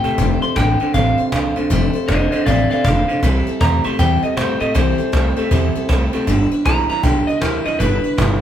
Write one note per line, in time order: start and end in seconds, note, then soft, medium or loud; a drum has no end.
0.00 0.40 G5 loud
0.00 cajon bass medium
0.04 0.17 C3 medium
0.04 0.18 G3 medium
0.04 0.17 A3 medium
0.04 0.19 C4 soft
0.04 0.19 G4 soft
0.04 0.18 A4 medium
0.04 muted upright bass stroke medium
0.18 0.41 F1 medium
0.18 0.54 F2 medium
0.18 0.54 C3 medium
0.18 0.42 F3 medium
0.18 0.42 A3 medium
0.18 0.43 D4 medium
0.18 0.42 A4 medium
0.18 0.41 C5 medium
0.18 cajon bass loud
0.18 cajon slap soft
0.30 cajon slap soft
0.42 0.56 D4 soft
0.42 0.56 A4 medium
0.42 0.56 C5 medium
0.42 0.56 C6 medium
0.42 cajon slap soft
0.56 0.79 A1 medium
0.56 0.78 F2 medium
0.56 0.78 D3 medium
0.56 0.80 A3 medium
0.56 0.81 D4 medium
0.56 0.80 A4 medium
0.56 0.79 C5 medium
0.56 0.93 G5 medium
0.56 cajon bass medium
0.56 cajon slap loud
0.80 0.93 F2 medium
0.80 0.93 D3 medium
0.80 0.94 D4 soft
0.80 0.94 A4 soft
0.80 0.94 C5 medium
0.80 muted upright bass stroke medium
0.80 cajon slap soft
0.87 cajon slap soft
0.94 1.17 A1 medium
0.94 1.30 F2 medium
0.94 1.30 C3 loud
0.94 1.18 F3 medium
0.94 1.18 A3 medium
0.94 1.18 D4 medium
0.94 1.18 A4 medium
0.94 1.17 C5 medium
0.94 1.68 F5 loud
0.94 cajon bass loud
0.94 cajon slap soft
1.18 1.32 D4 soft
1.18 1.33 A4 medium
1.18 1.32 C5 medium
1.18 muted upright bass stroke medium
1.18 cajon slap soft
1.25 cajon slap soft
1.32 1.55 C2 medium
1.32 1.54 F2 medium
1.32 1.54 D3 loud
1.32 1.56 A3 medium
1.32 1.57 D4 medium
1.32 1.56 A4 medium
1.32 1.55 C5 medium
1.32 cajon bass medium
1.32 cajon slap loud
1.56 1.70 D2 medium
1.56 1.69 F2 medium
1.56 1.69 D3 medium
1.56 1.70 D4 soft
1.56 1.70 A4 medium
1.56 1.70 C5 medium
1.56 cajon slap soft
1.70 1.94 F1 medium
1.70 2.06 F2 medium
1.70 2.06 C3 loud
1.70 1.94 F3 loud
1.70 1.94 A3 loud
1.70 1.95 D4 loud
1.70 1.94 A4 loud
1.70 1.92 C5 loud
1.70 cajon bass loud
1.70 cajon slap soft
1.82 cajon slap soft
1.93 2.08 D4 medium
1.93 2.09 A4 medium
1.93 2.08 C5 medium
1.93 muted upright bass stroke medium
1.93 cajon slap soft
2.02 cajon slap soft
2.08 2.32 F1 medium
2.08 2.30 F2 medium
2.08 2.31 D3 loud
2.08 2.32 A3 medium
2.08 2.33 D4 medium
2.08 2.32 A4 medium
2.08 2.30 C5 medium
2.08 2.31 C5 medium
2.08 2.31 D#5 medium
2.08 cajon bass medium
2.08 cajon slap loud
2.31 2.45 F2 medium
2.31 2.46 D3 medium
2.31 2.47 D4 soft
2.31 2.47 A4 medium
2.31 2.45 C5 medium
2.31 2.46 C5 medium
2.31 2.46 D#5 medium
2.31 cajon slap soft
2.39 cajon slap soft
2.46 2.69 A1 medium
2.46 2.82 F2 medium
2.46 2.82 C3 loud
2.46 2.71 F3 medium
2.46 2.71 A3 medium
2.46 2.71 D4 medium
2.46 2.71 A4 medium
2.46 2.69 C5 medium
2.46 2.68 D5 medium
2.46 2.70 F5 medium
2.46 cajon bass loud
2.46 cajon slap soft
2.70 2.84 D4 soft
2.70 2.85 A4 soft
2.70 2.85 C5 medium
2.70 2.84 D5 medium
2.70 2.84 F5 loud
2.70 muted upright bass stroke medium
2.70 cajon slap soft
2.77 cajon slap soft
2.84 3.08 F1 medium
2.84 3.06 F2 medium
2.84 3.06 D3 loud
2.84 3.08 A3 medium
2.84 3.09 D4 medium
2.84 3.09 A4 medium
2.84 3.08 C5 medium
2.84 3.22 F5 loud
2.84 cajon bass medium
2.84 cajon slap loud
3.08 3.21 F2 medium
3.08 3.21 D3 medium
3.08 3.24 D4 soft
3.08 3.24 A4 soft
3.08 3.23 C5 medium
3.08 muted upright bass stroke medium
3.08 cajon slap soft
3.23 3.46 C2 medium
3.23 3.58 C3 medium
3.23 3.47 C3 medium
3.23 3.47 E3 medium
3.23 3.58 G3 medium
3.23 3.47 G3 medium
3.23 3.47 C4 medium
3.23 3.47 E4 medium
3.23 3.46 A4 loud
3.23 cajon bass loud
3.23 cajon slap soft
3.35 cajon slap soft
3.47 3.59 G3 medium
3.47 3.61 C4 medium
3.47 3.61 E4 medium
3.47 3.61 A4 medium
3.47 cajon slap soft
3.60 3.84 E2 loud
3.60 3.82 C3 medium
3.60 3.85 G3 medium
3.60 3.83 A3 medium
3.60 3.85 C4 medium
3.60 3.84 E4 medium
3.60 3.83 A4 medium
3.60 3.85 A#5 loud
3.60 cajon bass medium
3.60 cajon slap loud
3.84 3.98 C3 medium
3.84 3.98 G3 soft
3.84 3.98 A3 medium
3.84 3.99 C4 soft
3.84 3.99 E4 medium
3.84 3.99 A4 medium
3.84 3.99 C6 medium
3.84 muted upright bass stroke medium
3.84 cajon slap soft
3.92 cajon slap soft
3.99 4.22 E2 loud
3.99 4.34 C3 medium
3.99 4.23 C3 medium
3.99 4.23 E3 medium
3.99 4.23 G3 medium
3.99 4.35 G3 medium
3.99 4.23 C4 medium
3.99 4.22 E4 medium
3.99 4.21 A4 medium
3.99 4.22 G5 medium
3.99 cajon bass loud
3.99 cajon slap soft
4.23 4.36 G3 soft
4.23 4.37 C4 soft
4.23 4.37 E4 medium
4.23 4.37 A4 medium
4.23 4.37 D#5 medium
4.23 muted upright bass stroke medium
4.23 cajon slap soft
4.31 cajon slap soft
4.37 4.60 G2 medium
4.37 4.58 C3 medium
4.37 4.61 G3 medium
4.37 4.59 A3 loud
4.37 4.61 C4 medium
4.37 4.60 E4 medium
4.37 4.59 A4 medium
4.37 4.60 C5 loud
4.37 cajon bass medium
4.37 cajon slap loud
4.60 4.75 A2 medium
4.60 4.73 C3 medium
4.60 4.74 G3 soft
4.60 4.74 A3 medium
4.60 4.74 C4 medium
4.60 4.75 E4 soft
4.60 4.75 A4 medium
4.60 4.75 D#5 loud
4.60 cajon slap soft
4.74 4.98 C2 medium
4.74 4.99 C3 medium
4.74 5.10 C3 medium
4.74 4.99 E3 medium
4.74 5.10 G3 medium
4.74 4.99 G3 medium
4.74 4.99 C4 loud
4.74 4.98 E4 medium
4.74 4.97 A4 medium
4.74 5.86 C5 loud
4.74 cajon bass loud
4.74 cajon slap soft
4.87 cajon slap soft
4.98 5.11 G3 medium
4.98 5.12 C4 medium
4.98 5.13 E4 medium
4.98 5.13 A4 medium
4.98 cajon slap soft
5.12 5.36 C2 medium
5.12 5.35 C3 medium
5.12 5.37 G3 medium
5.12 5.35 A3 medium
5.12 5.37 C4 medium
5.12 5.36 E4 medium
5.12 5.35 A4 medium
5.12 cajon bass medium
5.12 cajon slap loud
5.37 5.50 C3 medium
5.37 5.51 G3 medium
5.37 5.50 A3 medium
5.37 5.51 C4 medium
5.37 5.51 E4 medium
5.37 5.51 A4 medium
5.37 cajon slap soft
5.44 cajon slap soft
5.51 5.74 E2 medium
5.51 5.75 C3 medium
5.51 5.87 C3 medium
5.51 5.75 E3 medium
5.51 5.87 G3 medium
5.51 5.75 G3 medium
5.51 5.76 C4 medium
5.51 5.75 E4 medium
5.51 5.74 A4 medium
5.51 cajon bass loud
5.51 cajon slap soft
5.75 5.88 G3 soft
5.75 5.89 C4 medium
5.75 5.90 E4 medium
5.75 5.90 A4 medium
5.75 muted upright bass stroke medium
5.75 cajon slap soft
5.82 cajon slap soft
5.89 6.12 C2 loud
5.89 6.11 C3 medium
5.89 6.13 G3 medium
5.89 6.11 A3 medium
5.89 6.14 C4 medium
5.89 6.13 E4 medium
5.89 6.12 A4 medium
5.89 cajon bass medium
5.89 cajon slap loud
6.13 6.26 C3 medium
6.13 6.26 G3 medium
6.13 6.26 A3 medium
6.13 6.28 C4 medium
6.13 6.27 E4 medium
6.13 6.27 A4 medium
6.13 cajon slap medium
6.27 6.51 G1 medium
6.27 6.63 G2 medium
6.27 6.63 D3 medium
6.27 6.51 G3 medium
6.27 6.52 D4 medium
6.27 6.51 E4 loud
6.27 6.50 B4 loud
6.27 cajon bass loud
6.27 cajon slap soft
6.39 cajon slap soft
6.51 6.66 D4 medium
6.51 6.66 E4 medium
6.51 6.66 B4 medium
6.51 muted upright bass stroke medium
6.51 cajon slap soft
6.65 6.89 B1 medium
6.65 6.87 G2 medium
6.65 6.87 E3 loud
6.65 6.90 G3 medium
6.65 6.90 D4 medium
6.65 6.90 E4 medium
6.65 6.88 B4 medium
6.65 6.89 A#5 loud
6.65 cajon bass medium
6.65 cajon slap loud
6.89 7.02 G2 medium
6.89 7.03 E3 medium
6.89 7.03 D4 soft
6.89 7.04 E4 medium
6.89 7.04 B4 medium
6.89 7.03 A#5 medium
6.89 muted upright bass stroke medium
6.89 cajon slap soft
6.96 cajon slap soft
7.03 7.27 B1 loud
7.03 7.39 G2 medium
7.03 7.39 D3 medium
7.03 7.28 G3 medium
7.03 7.28 D4 medium
7.03 7.28 E4 medium
7.03 7.26 B4 medium
7.03 7.27 G5 medium
7.03 cajon bass loud
7.03 cajon slap soft
7.27 7.42 D4 soft
7.27 7.42 E4 medium
7.27 7.42 B4 medium
7.27 7.41 D#5 loud
7.27 muted upright bass stroke medium
7.27 cajon slap soft
7.34 cajon slap soft
7.41 7.65 D2 loud
7.41 7.63 G2 medium
7.41 7.64 E3 loud
7.41 7.66 G3 medium
7.41 7.66 D4 medium
7.41 7.66 E4 medium
7.41 7.65 A#4 medium
7.41 7.64 B4 medium
7.41 cajon bass medium
7.41 cajon slap loud
7.65 7.79 E2 medium
7.65 7.78 G2 medium
7.65 7.79 E3 medium
7.65 7.79 D4 soft
7.65 7.80 E4 medium
7.65 7.80 B4 medium
7.65 7.80 D#5 medium
7.65 cajon slap soft
7.79 8.03 G1 medium
7.79 8.15 G2 medium
7.79 8.16 D3 medium
7.79 8.04 G3 medium
7.79 8.04 D4 medium
7.79 8.04 E4 loud
7.79 8.41 B4 loud
7.79 8.03 B4 medium
7.79 cajon bass loud
7.79 cajon slap soft
7.92 cajon slap soft
8.04 8.17 D4 soft
8.04 8.18 E4 medium
8.04 8.18 B4 medium
8.04 muted upright bass stroke medium
8.04 cajon slap soft
8.11 cajon slap soft
8.18 8.41 G1 loud
8.18 8.40 G2 medium
8.18 8.40 E3 medium
8.18 8.41 G3 medium
8.18 8.41 D4 medium
8.18 8.41 E4 medium
8.18 8.40 B4 medium
8.18 cajon bass medium
8.18 cajon slap loud